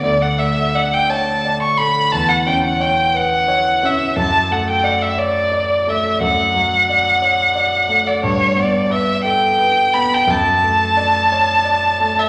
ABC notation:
X:1
M:12/8
L:1/16
Q:3/8=58
K:D
V:1 name="Violin"
d f e2 f g a3 c' b2 a f g f g2 f4 e2 | a2 f g f e d4 e2 f8- f3 d | c2 d2 e2 g4 b g a8- a3 e |]
V:2 name="Grand piano"
D,,2 A,2 d2 c2 d2 A,2 E,,2 C2 c2 B2 c2 C2 | F,,2 A,2 d2 c2 d2 A,2 F,,2 F,2 d2 c2 d2 A,2 | G,,2 B,2 B2 A2 B2 B,2 F,,2 A,2 d2 c2 d2 A,2 |]